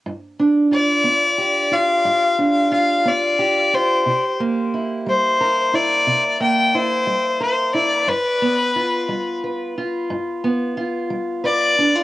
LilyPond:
<<
  \new Staff \with { instrumentName = "Fiddle" } { \time 12/8 \key g \mixolydian \tempo 4. = 60 r4 d''4. f''4. f''8 d''4 c''8~ | c''8 r4 c''4 d''4 g''8 c''4 c''8 d''8 | b'2 r2. d''4 | }
  \new Staff \with { instrumentName = "Steel-string acoustic guitar" } { \time 12/8 \key g \mixolydian << { r8 d'8 f'4 g'8 f'4 d'8 f'4 g'8 f'8 | r8 bes8 e'4 bes'8 e'4 bes8 e'4 bes'8 e'8 | r8 b8 f'4 b'8 f'4 b8 f'4 b'8 d'16 f'16 | } \\ { g,4 r8 b4 r8 g,4 r8 b4 r8 | c4 r8 g4 r8 c4 r8 g4 r8 | g,4 r8 g4 r8 g,4 r8 g4 r8 | } >> }
>>